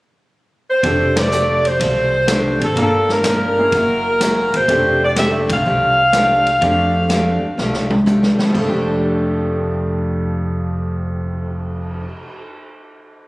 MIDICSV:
0, 0, Header, 1, 8, 480
1, 0, Start_track
1, 0, Key_signature, -1, "major"
1, 0, Tempo, 481541
1, 841, Time_signature, 4, 2, 24, 8
1, 13235, End_track
2, 0, Start_track
2, 0, Title_t, "Saxophone section"
2, 0, Program_c, 0, 65
2, 699, Note_on_c, 0, 72, 89
2, 1140, Note_off_c, 0, 72, 0
2, 1173, Note_on_c, 0, 74, 85
2, 1647, Note_on_c, 0, 72, 85
2, 1649, Note_off_c, 0, 74, 0
2, 2604, Note_off_c, 0, 72, 0
2, 2620, Note_on_c, 0, 69, 78
2, 2753, Note_off_c, 0, 69, 0
2, 2774, Note_on_c, 0, 69, 90
2, 3071, Note_off_c, 0, 69, 0
2, 3105, Note_on_c, 0, 70, 97
2, 4531, Note_on_c, 0, 72, 94
2, 4534, Note_off_c, 0, 70, 0
2, 5008, Note_off_c, 0, 72, 0
2, 5017, Note_on_c, 0, 74, 97
2, 5082, Note_off_c, 0, 74, 0
2, 5160, Note_on_c, 0, 76, 91
2, 5307, Note_off_c, 0, 76, 0
2, 5508, Note_on_c, 0, 77, 110
2, 8014, Note_off_c, 0, 77, 0
2, 13235, End_track
3, 0, Start_track
3, 0, Title_t, "Grand piano"
3, 0, Program_c, 1, 0
3, 829, Note_on_c, 1, 60, 48
3, 831, Note_on_c, 1, 62, 45
3, 841, Note_on_c, 1, 67, 46
3, 852, Note_on_c, 1, 69, 52
3, 1130, Note_off_c, 1, 60, 0
3, 1131, Note_off_c, 1, 62, 0
3, 1136, Note_off_c, 1, 67, 0
3, 1142, Note_off_c, 1, 69, 0
3, 2747, Note_on_c, 1, 58, 49
3, 2755, Note_on_c, 1, 62, 45
3, 2758, Note_on_c, 1, 65, 44
3, 2767, Note_on_c, 1, 70, 52
3, 3493, Note_off_c, 1, 58, 0
3, 3497, Note_off_c, 1, 62, 0
3, 3499, Note_off_c, 1, 65, 0
3, 3503, Note_off_c, 1, 70, 0
3, 3563, Note_on_c, 1, 58, 47
3, 3569, Note_on_c, 1, 61, 45
3, 3578, Note_on_c, 1, 64, 43
3, 3579, Note_on_c, 1, 68, 54
3, 3699, Note_off_c, 1, 58, 0
3, 3702, Note_off_c, 1, 61, 0
3, 3706, Note_off_c, 1, 64, 0
3, 3707, Note_off_c, 1, 68, 0
3, 4665, Note_on_c, 1, 57, 57
3, 4673, Note_on_c, 1, 60, 57
3, 4678, Note_on_c, 1, 62, 54
3, 4686, Note_on_c, 1, 67, 68
3, 4966, Note_off_c, 1, 57, 0
3, 4970, Note_off_c, 1, 60, 0
3, 4973, Note_off_c, 1, 62, 0
3, 4977, Note_off_c, 1, 67, 0
3, 5162, Note_on_c, 1, 57, 62
3, 5169, Note_on_c, 1, 60, 54
3, 5171, Note_on_c, 1, 62, 52
3, 5177, Note_on_c, 1, 67, 59
3, 5455, Note_off_c, 1, 57, 0
3, 5458, Note_off_c, 1, 60, 0
3, 5459, Note_off_c, 1, 62, 0
3, 5462, Note_off_c, 1, 67, 0
3, 6595, Note_on_c, 1, 57, 63
3, 6600, Note_on_c, 1, 60, 55
3, 6609, Note_on_c, 1, 62, 57
3, 6610, Note_on_c, 1, 67, 66
3, 7342, Note_off_c, 1, 57, 0
3, 7344, Note_off_c, 1, 60, 0
3, 7349, Note_off_c, 1, 62, 0
3, 7349, Note_off_c, 1, 67, 0
3, 8412, Note_on_c, 1, 41, 63
3, 8477, Note_on_c, 1, 53, 57
3, 8536, Note_on_c, 1, 57, 60
3, 8602, Note_on_c, 1, 62, 53
3, 8663, Note_on_c, 1, 67, 65
3, 11943, Note_off_c, 1, 41, 0
3, 12008, Note_off_c, 1, 53, 0
3, 12067, Note_off_c, 1, 57, 0
3, 12134, Note_off_c, 1, 62, 0
3, 12194, Note_off_c, 1, 67, 0
3, 13235, End_track
4, 0, Start_track
4, 0, Title_t, "Steel-string acoustic guitar"
4, 0, Program_c, 2, 25
4, 829, Note_on_c, 2, 53, 47
4, 845, Note_on_c, 2, 57, 44
4, 857, Note_on_c, 2, 62, 52
4, 859, Note_on_c, 2, 67, 57
4, 1178, Note_off_c, 2, 53, 0
4, 1186, Note_off_c, 2, 57, 0
4, 1192, Note_off_c, 2, 62, 0
4, 1193, Note_off_c, 2, 67, 0
4, 1312, Note_on_c, 2, 53, 55
4, 1312, Note_on_c, 2, 57, 62
4, 1321, Note_on_c, 2, 62, 63
4, 1329, Note_on_c, 2, 67, 66
4, 1658, Note_off_c, 2, 53, 0
4, 1659, Note_off_c, 2, 57, 0
4, 1663, Note_off_c, 2, 62, 0
4, 1667, Note_off_c, 2, 67, 0
4, 1800, Note_on_c, 2, 53, 45
4, 1813, Note_on_c, 2, 57, 41
4, 1824, Note_on_c, 2, 62, 53
4, 1833, Note_on_c, 2, 67, 52
4, 2142, Note_off_c, 2, 53, 0
4, 2149, Note_off_c, 2, 57, 0
4, 2154, Note_off_c, 2, 62, 0
4, 2159, Note_off_c, 2, 67, 0
4, 2278, Note_on_c, 2, 53, 59
4, 2281, Note_on_c, 2, 57, 64
4, 2288, Note_on_c, 2, 62, 67
4, 2296, Note_on_c, 2, 67, 74
4, 2621, Note_off_c, 2, 53, 0
4, 2622, Note_off_c, 2, 57, 0
4, 2625, Note_off_c, 2, 62, 0
4, 2630, Note_off_c, 2, 67, 0
4, 2743, Note_on_c, 2, 43, 42
4, 2762, Note_on_c, 2, 53, 50
4, 2770, Note_on_c, 2, 58, 44
4, 2777, Note_on_c, 2, 62, 53
4, 3093, Note_off_c, 2, 43, 0
4, 3102, Note_off_c, 2, 53, 0
4, 3106, Note_off_c, 2, 58, 0
4, 3110, Note_off_c, 2, 62, 0
4, 3238, Note_on_c, 2, 43, 56
4, 3246, Note_on_c, 2, 53, 62
4, 3256, Note_on_c, 2, 58, 63
4, 3260, Note_on_c, 2, 62, 59
4, 3580, Note_off_c, 2, 43, 0
4, 3584, Note_off_c, 2, 53, 0
4, 3589, Note_off_c, 2, 58, 0
4, 3591, Note_off_c, 2, 62, 0
4, 3721, Note_on_c, 2, 54, 45
4, 3741, Note_on_c, 2, 58, 53
4, 3748, Note_on_c, 2, 64, 56
4, 3754, Note_on_c, 2, 68, 51
4, 4061, Note_off_c, 2, 54, 0
4, 4071, Note_off_c, 2, 58, 0
4, 4075, Note_off_c, 2, 64, 0
4, 4078, Note_off_c, 2, 68, 0
4, 4195, Note_on_c, 2, 54, 58
4, 4206, Note_on_c, 2, 58, 62
4, 4218, Note_on_c, 2, 64, 63
4, 4224, Note_on_c, 2, 68, 71
4, 4539, Note_off_c, 2, 54, 0
4, 4544, Note_off_c, 2, 58, 0
4, 4550, Note_off_c, 2, 64, 0
4, 4553, Note_off_c, 2, 68, 0
4, 4682, Note_on_c, 2, 53, 50
4, 4687, Note_on_c, 2, 57, 50
4, 4694, Note_on_c, 2, 62, 51
4, 4705, Note_on_c, 2, 67, 50
4, 5023, Note_off_c, 2, 53, 0
4, 5025, Note_off_c, 2, 57, 0
4, 5029, Note_off_c, 2, 62, 0
4, 5034, Note_off_c, 2, 67, 0
4, 5153, Note_on_c, 2, 53, 60
4, 5162, Note_on_c, 2, 57, 61
4, 5172, Note_on_c, 2, 62, 58
4, 5172, Note_on_c, 2, 67, 66
4, 5499, Note_off_c, 2, 53, 0
4, 5503, Note_off_c, 2, 57, 0
4, 5508, Note_off_c, 2, 62, 0
4, 5508, Note_off_c, 2, 67, 0
4, 5635, Note_on_c, 2, 53, 46
4, 5647, Note_on_c, 2, 57, 47
4, 5658, Note_on_c, 2, 62, 41
4, 5668, Note_on_c, 2, 67, 46
4, 5980, Note_off_c, 2, 53, 0
4, 5986, Note_off_c, 2, 57, 0
4, 5992, Note_off_c, 2, 62, 0
4, 5997, Note_off_c, 2, 67, 0
4, 6118, Note_on_c, 2, 53, 67
4, 6126, Note_on_c, 2, 57, 67
4, 6138, Note_on_c, 2, 62, 71
4, 6141, Note_on_c, 2, 67, 67
4, 6462, Note_off_c, 2, 53, 0
4, 6466, Note_off_c, 2, 57, 0
4, 6472, Note_off_c, 2, 62, 0
4, 6474, Note_off_c, 2, 67, 0
4, 6593, Note_on_c, 2, 53, 54
4, 6602, Note_on_c, 2, 57, 54
4, 6608, Note_on_c, 2, 62, 58
4, 6626, Note_on_c, 2, 67, 57
4, 6940, Note_off_c, 2, 53, 0
4, 6945, Note_off_c, 2, 57, 0
4, 6948, Note_off_c, 2, 62, 0
4, 6957, Note_off_c, 2, 67, 0
4, 7075, Note_on_c, 2, 53, 66
4, 7084, Note_on_c, 2, 57, 57
4, 7093, Note_on_c, 2, 67, 63
4, 7097, Note_on_c, 2, 62, 74
4, 7422, Note_off_c, 2, 53, 0
4, 7426, Note_off_c, 2, 57, 0
4, 7431, Note_off_c, 2, 67, 0
4, 7433, Note_off_c, 2, 62, 0
4, 7563, Note_on_c, 2, 53, 49
4, 7575, Note_on_c, 2, 57, 55
4, 7589, Note_on_c, 2, 62, 46
4, 7595, Note_on_c, 2, 67, 48
4, 7907, Note_off_c, 2, 53, 0
4, 7913, Note_off_c, 2, 57, 0
4, 7920, Note_off_c, 2, 62, 0
4, 7923, Note_off_c, 2, 67, 0
4, 8035, Note_on_c, 2, 53, 63
4, 8045, Note_on_c, 2, 57, 64
4, 8051, Note_on_c, 2, 62, 63
4, 8064, Note_on_c, 2, 67, 78
4, 8383, Note_off_c, 2, 53, 0
4, 8389, Note_off_c, 2, 57, 0
4, 8391, Note_off_c, 2, 62, 0
4, 8398, Note_off_c, 2, 67, 0
4, 8475, Note_on_c, 2, 53, 61
4, 8552, Note_on_c, 2, 57, 68
4, 8610, Note_on_c, 2, 62, 59
4, 8664, Note_on_c, 2, 67, 63
4, 12006, Note_off_c, 2, 53, 0
4, 12083, Note_off_c, 2, 57, 0
4, 12142, Note_off_c, 2, 62, 0
4, 12195, Note_off_c, 2, 67, 0
4, 13235, End_track
5, 0, Start_track
5, 0, Title_t, "Upright bass"
5, 0, Program_c, 3, 32
5, 828, Note_on_c, 3, 29, 87
5, 1751, Note_off_c, 3, 29, 0
5, 1789, Note_on_c, 3, 36, 84
5, 2560, Note_off_c, 3, 36, 0
5, 2592, Note_on_c, 3, 32, 73
5, 2738, Note_off_c, 3, 32, 0
5, 2749, Note_on_c, 3, 31, 84
5, 3197, Note_off_c, 3, 31, 0
5, 3228, Note_on_c, 3, 31, 67
5, 3677, Note_off_c, 3, 31, 0
5, 3712, Note_on_c, 3, 30, 83
5, 4482, Note_off_c, 3, 30, 0
5, 4521, Note_on_c, 3, 30, 74
5, 4662, Note_off_c, 3, 30, 0
5, 4667, Note_on_c, 3, 29, 92
5, 5441, Note_off_c, 3, 29, 0
5, 5480, Note_on_c, 3, 36, 69
5, 5623, Note_off_c, 3, 36, 0
5, 5641, Note_on_c, 3, 36, 80
5, 6561, Note_off_c, 3, 36, 0
5, 6593, Note_on_c, 3, 41, 92
5, 7367, Note_off_c, 3, 41, 0
5, 7552, Note_on_c, 3, 36, 79
5, 8327, Note_off_c, 3, 36, 0
5, 8515, Note_on_c, 3, 29, 96
5, 12006, Note_off_c, 3, 29, 0
5, 13235, End_track
6, 0, Start_track
6, 0, Title_t, "Cymbal swell"
6, 8851, Note_on_c, 9, 59, 49
6, 12272, Note_off_c, 9, 59, 0
6, 13235, End_track
7, 0, Start_track
7, 0, Title_t, "Muted upright bass strokes"
7, 7407, Note_on_c, 9, 29, 39
7, 7506, Note_off_c, 9, 29, 0
7, 8379, Note_on_c, 9, 29, 36
7, 8479, Note_off_c, 9, 29, 0
7, 13235, End_track
8, 0, Start_track
8, 0, Title_t, "Drums"
8, 830, Note_on_c, 9, 36, 27
8, 831, Note_on_c, 9, 51, 47
8, 930, Note_off_c, 9, 36, 0
8, 930, Note_off_c, 9, 51, 0
8, 1159, Note_on_c, 9, 38, 85
8, 1161, Note_on_c, 9, 51, 66
8, 1259, Note_off_c, 9, 38, 0
8, 1261, Note_off_c, 9, 51, 0
8, 1314, Note_on_c, 9, 44, 52
8, 1413, Note_off_c, 9, 44, 0
8, 1643, Note_on_c, 9, 51, 41
8, 1743, Note_off_c, 9, 51, 0
8, 1791, Note_on_c, 9, 36, 31
8, 1799, Note_on_c, 9, 51, 55
8, 1890, Note_off_c, 9, 36, 0
8, 1899, Note_off_c, 9, 51, 0
8, 2270, Note_on_c, 9, 38, 71
8, 2272, Note_on_c, 9, 44, 51
8, 2272, Note_on_c, 9, 51, 60
8, 2369, Note_off_c, 9, 38, 0
8, 2371, Note_off_c, 9, 44, 0
8, 2371, Note_off_c, 9, 51, 0
8, 2605, Note_on_c, 9, 51, 46
8, 2705, Note_off_c, 9, 51, 0
8, 2751, Note_on_c, 9, 36, 27
8, 2758, Note_on_c, 9, 51, 44
8, 2850, Note_off_c, 9, 36, 0
8, 2857, Note_off_c, 9, 51, 0
8, 3081, Note_on_c, 9, 38, 50
8, 3180, Note_off_c, 9, 38, 0
8, 3226, Note_on_c, 9, 38, 64
8, 3228, Note_on_c, 9, 44, 48
8, 3228, Note_on_c, 9, 51, 62
8, 3326, Note_off_c, 9, 38, 0
8, 3328, Note_off_c, 9, 44, 0
8, 3328, Note_off_c, 9, 51, 0
8, 3709, Note_on_c, 9, 36, 30
8, 3709, Note_on_c, 9, 51, 52
8, 3809, Note_off_c, 9, 36, 0
8, 3809, Note_off_c, 9, 51, 0
8, 4191, Note_on_c, 9, 38, 64
8, 4193, Note_on_c, 9, 44, 66
8, 4193, Note_on_c, 9, 51, 61
8, 4291, Note_off_c, 9, 38, 0
8, 4293, Note_off_c, 9, 44, 0
8, 4293, Note_off_c, 9, 51, 0
8, 4522, Note_on_c, 9, 51, 45
8, 4622, Note_off_c, 9, 51, 0
8, 4668, Note_on_c, 9, 36, 29
8, 4671, Note_on_c, 9, 51, 49
8, 4768, Note_off_c, 9, 36, 0
8, 4771, Note_off_c, 9, 51, 0
8, 5144, Note_on_c, 9, 38, 61
8, 5146, Note_on_c, 9, 44, 56
8, 5146, Note_on_c, 9, 51, 65
8, 5244, Note_off_c, 9, 38, 0
8, 5246, Note_off_c, 9, 44, 0
8, 5246, Note_off_c, 9, 51, 0
8, 5478, Note_on_c, 9, 36, 72
8, 5480, Note_on_c, 9, 51, 64
8, 5578, Note_off_c, 9, 36, 0
8, 5580, Note_off_c, 9, 51, 0
8, 6109, Note_on_c, 9, 38, 65
8, 6111, Note_on_c, 9, 44, 56
8, 6111, Note_on_c, 9, 51, 59
8, 6209, Note_off_c, 9, 38, 0
8, 6211, Note_off_c, 9, 44, 0
8, 6211, Note_off_c, 9, 51, 0
8, 6444, Note_on_c, 9, 51, 44
8, 6544, Note_off_c, 9, 51, 0
8, 6592, Note_on_c, 9, 36, 27
8, 6596, Note_on_c, 9, 51, 49
8, 6691, Note_off_c, 9, 36, 0
8, 6695, Note_off_c, 9, 51, 0
8, 7072, Note_on_c, 9, 38, 68
8, 7074, Note_on_c, 9, 44, 50
8, 7074, Note_on_c, 9, 51, 54
8, 7172, Note_off_c, 9, 38, 0
8, 7174, Note_off_c, 9, 44, 0
8, 7174, Note_off_c, 9, 51, 0
8, 7557, Note_on_c, 9, 38, 44
8, 7657, Note_off_c, 9, 38, 0
8, 7713, Note_on_c, 9, 38, 48
8, 7813, Note_off_c, 9, 38, 0
8, 7878, Note_on_c, 9, 48, 68
8, 7978, Note_off_c, 9, 48, 0
8, 8043, Note_on_c, 9, 48, 63
8, 8045, Note_on_c, 9, 44, 49
8, 8143, Note_off_c, 9, 48, 0
8, 8145, Note_off_c, 9, 44, 0
8, 8202, Note_on_c, 9, 38, 68
8, 8302, Note_off_c, 9, 38, 0
8, 8363, Note_on_c, 9, 38, 89
8, 8463, Note_off_c, 9, 38, 0
8, 8519, Note_on_c, 9, 36, 44
8, 8521, Note_on_c, 9, 49, 52
8, 8619, Note_off_c, 9, 36, 0
8, 8621, Note_off_c, 9, 49, 0
8, 13235, End_track
0, 0, End_of_file